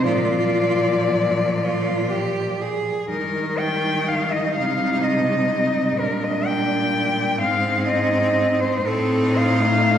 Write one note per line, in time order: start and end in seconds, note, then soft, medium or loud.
0.05 2.89 A#2 medium
0.05 2.85 F3 medium
0.05 1.44 F4 medium
0.05 2.56 D5 loud
1.59 2.12 F4 medium
2.10 2.63 G4 medium
2.61 3.09 G#4 medium
3.09 4.58 D#3 medium
3.09 7.36 G3 medium
3.09 5.95 D#4 medium
3.09 3.60 A#4 medium
3.59 4.10 G5 medium
4.08 4.34 F5 medium
4.32 4.55 D#5 medium
4.55 5.98 C3 medium
4.55 5.05 F5 medium
5.03 6.00 D#5 medium
5.99 7.41 A#2 medium
5.99 7.37 D4 medium
5.99 6.25 A#4 medium
6.24 6.48 D#5 medium
6.47 7.40 G5 loud
7.39 8.85 G#2 medium
7.39 8.81 C4 medium
7.39 8.81 D#4 medium
7.39 7.87 F5 loud
7.88 8.61 D#5 medium
8.60 8.88 C5 medium
8.85 9.98 A2 medium
8.85 9.62 C4 medium
8.85 9.98 D#4 medium
8.85 9.38 A4 medium
9.37 9.98 F5 loud
9.60 9.98 A3 medium